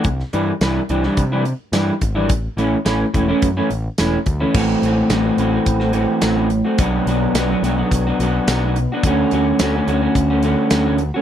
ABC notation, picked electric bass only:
X:1
M:4/4
L:1/8
Q:1/4=107
K:A
V:1 name="Picked electric bass" clef=bass
=C,, =G,, C,, C,, =C,2 G,, ^G,,, | A,,, A,,, A,,, E,,, F,, A,,, E,,, D,, | A,,, A,,, A,,, A,,, A,,,2 A,,,2 | B,,, B,,, B,,, B,,, B,,, B,,, B,,,2 |
D,, D,, D,, D,, D,,2 D,,2 |]